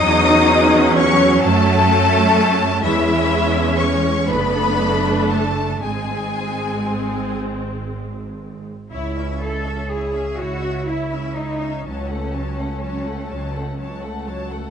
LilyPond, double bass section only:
\new Staff \with { instrumentName = "Double bass section" } { \clef bass \time 6/8 \key cis \minor \tempo 4. = 41 e,4. fis,4. | e,4. fis,,4. | gis,,2. | cis,4. cis,4. |
cis,4. cis,4. | }